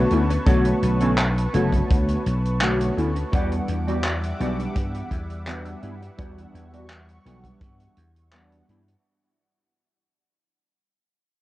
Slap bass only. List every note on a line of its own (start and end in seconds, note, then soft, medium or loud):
0.11 0.37 D2 medium
0.47 0.72 B1 medium
0.83 1.46 B1 medium
1.54 1.79 F#1 loud
1.90 2.15 D2 medium
2.26 2.89 B1 medium
2.97 3.22 D2 medium
3.33 3.58 E2 loud
3.68 4.31 E2 medium
4.40 4.65 B1 medium
4.76 5.01 G2 medium
5.11 5.74 E2 medium
5.83 6.08 G2 medium
6.19 6.44 E2 medium
6.54 7.17 E2 medium
7.26 7.51 B1 medium
7.61 7.86 G2 medium
7.97 8.60 E2 medium
8.69 8.94 G2 medium